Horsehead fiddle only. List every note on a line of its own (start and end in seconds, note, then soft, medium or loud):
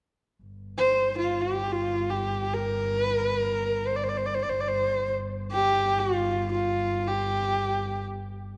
0.78 1.15 C5 medium
1.18 1.43 F4 medium
1.41 1.74 G4 medium
1.72 2.11 F4 medium
2.10 2.55 G4 medium
2.53 3.00 A#4 medium
3.00 3.13 B4 medium
3.13 3.27 A#4 medium
3.27 3.40 B4 medium
3.40 3.88 A#4 medium
3.87 3.97 C5 medium
3.96 4.05 D5 medium
4.03 4.10 C5 medium
4.09 4.19 D5 medium
4.17 4.27 C5 medium
4.26 4.36 D5 medium
4.34 4.44 C5 medium
4.43 4.51 D5 medium
4.49 4.62 C5 medium
4.60 4.69 D5 medium
4.68 5.12 C5 medium
5.52 6.00 G4 medium
5.99 6.50 F4 medium
6.51 7.09 F4 medium
7.07 8.04 G4 medium